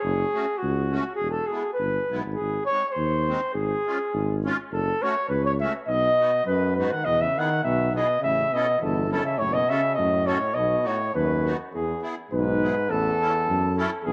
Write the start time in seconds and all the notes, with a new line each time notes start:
Already playing: G#4
0.03 F#1
0.33 A3 C#4 F#4
0.58 F#4
0.62 C#2
0.91 A3 C#4 F#4
1.15 G#4
1.20 E1
1.31 A4
1.46 G#3 G#4
1.51 B3 E4
1.73 B4
1.79 G1
2.11 B1 G#3 B3 E4
2.25 G#1
2.34 G#4
2.40 G#1
2.65 C#5
2.70 G#3 C4 D#4
2.88 C5 C#5
2.97 D#2
3.28 G#3 C4 D#4
3.54 G#1 G#4
3.85 G#3 C#4 F4
4.14 G#1
4.44 G#3 C#4 F4
4.71 F#1 A4
5.02 A3 C#4 F#4 C#5
5.29 C#2 B4
5.45 C#5
5.60 A3 C#4 F#4 E5
5.88 B1 B2 D#5
6.19 B3 D#4 F#4
6.44 F#2 B4
6.76 G#2 B3 D#4 F#4 B4
6.92 D#3 F#5
7.04 E2 B2 D#5
7.21 C#3 E5
7.37 D#3 B3 E4 G#4 F#5
7.63 B1 B2 E5
7.93 B2 B3 E4 G#4 D#5
8.20 C#3 E5
8.24 A1
8.52 B2 C#4 E4 D#5
8.56 A4
8.79 G1 E2 A4
9.10 F#2 C#4 E4 A4
9.23 C#3 E5
9.38 F#1 A2 C#5
9.51 B2 D#5
9.69 C#3 C#4 F#4 A4 E5
9.94 A2 D#5
9.99 F#2
10.26 A2 C#4 F#4 A4 C#5
10.54 B1 B2 D#5
10.82 A2 B3 D#4 F#4
10.87 C#5
11.14 D#2 F#2 B4
11.44 B3 D#4 F#4
11.72 E2 G#4
12.02 B3 E4 G#4
12.31 B1 G#2 B4
12.62 B3 E4 G#4
12.89 A1 E2 A4
13.21 C#4 E4 A4
13.48 F#2
13.77 C#4 E4 A4
14.04 B1 E2 G#4